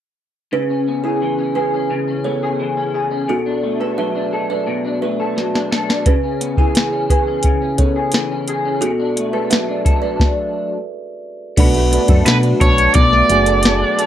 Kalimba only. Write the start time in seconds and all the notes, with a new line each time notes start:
0.53 G#4 B4
1.04 E4 G#4
1.55 G#4 B4
2.24 A4 C#5
3.29 F#4 A4
3.81 G#4 B4
3.98 B4 E5
4.50 B4 D5
5.02 G#4 B4
6.07 G#4 B4
6.58 E4 G#4
7.10 G#4 B4
7.78 A4 C#5
8.81 F#4 A4
9.33 G#4 B4
9.50 B4 E5
10.02 B4 D5